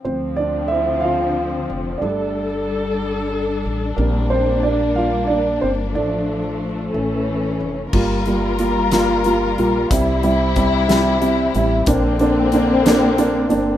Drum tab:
CC |------|------|------|------|
HH |------|------|------|------|
SD |------|------|------|------|
BD |------|------|------|------|

CC |x-----|------|------|
HH |-xxxxx|xxxxxx|xxxxxx|
SD |---o--|---o--|---o--|
BD |o-----|o-o---|o-----|